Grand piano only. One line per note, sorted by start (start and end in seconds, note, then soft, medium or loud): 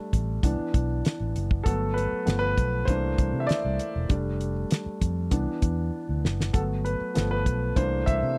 0.00 0.45 G3 soft
0.00 0.45 A3 soft
0.00 0.44 D4 medium
0.43 0.84 E3 soft
0.43 0.84 B3 soft
0.43 0.84 D4 medium
1.64 2.06 F#3 soft
1.64 2.06 A3 soft
1.64 2.06 B3 medium
1.64 1.96 A4 medium
1.94 2.37 B4 medium
2.26 2.84 F3 soft
2.26 2.85 A3 soft
2.26 2.85 B3 medium
2.39 2.83 B4 loud
2.85 4.06 E3 soft
2.85 4.06 A3 soft
2.85 4.06 A#3 soft
2.85 4.07 D4 soft
2.85 3.42 C5 medium
3.40 3.48 E5 medium
3.47 3.90 D5 medium
4.09 4.50 G3 soft
4.09 4.51 A3 soft
4.09 4.51 D4 soft
5.31 5.72 E3 soft
5.31 5.72 B3 soft
5.31 5.73 D4 soft
6.53 6.95 F#3 soft
6.53 6.95 A3 soft
6.53 6.95 B3 soft
6.53 6.60 A4 medium
6.85 7.28 B4 medium
7.15 7.73 F3 soft
7.15 7.74 A3 soft
7.15 7.74 B3 medium
7.31 7.78 B4 medium
7.76 8.38 E3 soft
7.76 8.38 A3 soft
7.76 8.38 A#3 soft
7.76 8.38 D4 medium
7.76 8.08 C5 medium
8.06 8.38 E5 medium